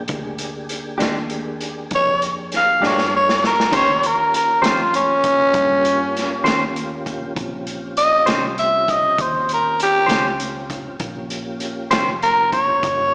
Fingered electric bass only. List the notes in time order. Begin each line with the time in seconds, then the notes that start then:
0.09 D2
1.00 D#2
1.92 F2
2.81 G2
3.73 D#2
4.62 F2
5.53 G2
6.44 D#2
7.35 A#1
8.27 C2
9.18 D#2
10.08 C#2
10.99 A#1
11.91 F1
12.83 G1